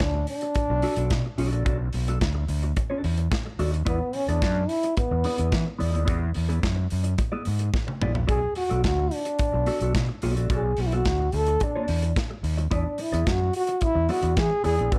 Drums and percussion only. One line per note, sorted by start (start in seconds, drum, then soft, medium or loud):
0.00 kick loud
0.00 snare loud
0.27 open hi-hat medium
0.41 closed hi-hat medium
0.55 kick medium
0.55 closed hi-hat medium
0.82 open hi-hat medium
0.96 closed hi-hat medium
1.10 kick loud
1.10 snare loud
1.10 closed hi-hat medium
1.38 open hi-hat medium
1.53 closed hi-hat soft
1.66 kick loud
1.66 closed hi-hat medium
1.93 open hi-hat medium
2.08 closed hi-hat medium
2.21 kick loud
2.21 snare loud
2.21 closed hi-hat medium
2.48 open hi-hat medium
2.63 closed hi-hat soft
2.76 kick medium
2.76 closed hi-hat medium
3.04 open hi-hat medium
3.18 closed hi-hat medium
3.32 kick loud
3.32 snare loud
3.32 closed hi-hat medium
3.59 open hi-hat medium
3.74 closed hi-hat soft
3.86 kick loud
3.86 closed hi-hat medium
4.13 open hi-hat medium
4.29 closed hi-hat soft
4.42 kick loud
4.42 snare loud
4.42 closed hi-hat medium
4.69 open hi-hat medium
4.83 closed hi-hat medium
4.97 kick loud
4.97 closed hi-hat medium
5.24 open hi-hat medium
5.38 closed hi-hat medium
5.52 kick loud
5.52 snare loud
5.52 closed hi-hat medium
5.80 open hi-hat medium
5.95 closed hi-hat soft
6.08 kick loud
6.08 closed hi-hat medium
6.34 open hi-hat medium
6.50 closed hi-hat medium
6.63 kick loud
6.63 snare loud
6.63 closed hi-hat medium
6.90 open hi-hat medium
7.04 closed hi-hat medium
7.18 kick medium
7.18 closed hi-hat medium
7.45 open hi-hat medium
7.59 closed hi-hat medium
7.74 kick loud
7.74 snare medium
7.88 high tom medium
8.02 mid tom loud
8.15 floor tom medium
8.29 kick loud
8.29 closed hi-hat medium
8.55 open hi-hat medium
8.71 closed hi-hat soft
8.84 kick loud
8.84 snare loud
8.84 closed hi-hat medium
9.11 open hi-hat medium
9.25 closed hi-hat medium
9.39 kick loud
9.39 closed hi-hat medium
9.66 open hi-hat medium
9.81 closed hi-hat medium
9.95 kick loud
9.95 snare loud
9.95 closed hi-hat medium
10.22 open hi-hat medium
10.37 closed hi-hat soft
10.50 kick loud
10.50 closed hi-hat medium
10.77 open hi-hat medium
10.92 closed hi-hat soft
11.05 kick loud
11.05 snare loud
11.05 closed hi-hat medium
11.32 open hi-hat medium
11.47 closed hi-hat medium
11.60 kick medium
11.60 closed hi-hat medium
11.88 open hi-hat medium
12.02 closed hi-hat medium
12.16 kick loud
12.16 snare loud
12.16 closed hi-hat medium
12.44 open hi-hat medium
12.58 closed hi-hat soft
12.71 kick loud
12.71 closed hi-hat medium
12.98 open hi-hat medium
13.14 closed hi-hat medium
13.27 kick loud
13.27 snare loud
13.27 closed hi-hat medium
13.53 open hi-hat medium
13.67 closed hi-hat medium
13.81 kick medium
13.81 closed hi-hat medium
14.09 open hi-hat medium
14.23 closed hi-hat medium
14.37 kick loud
14.37 snare loud
14.37 closed hi-hat medium
14.64 open hi-hat medium
14.79 closed hi-hat soft
14.92 kick loud
14.92 closed hi-hat medium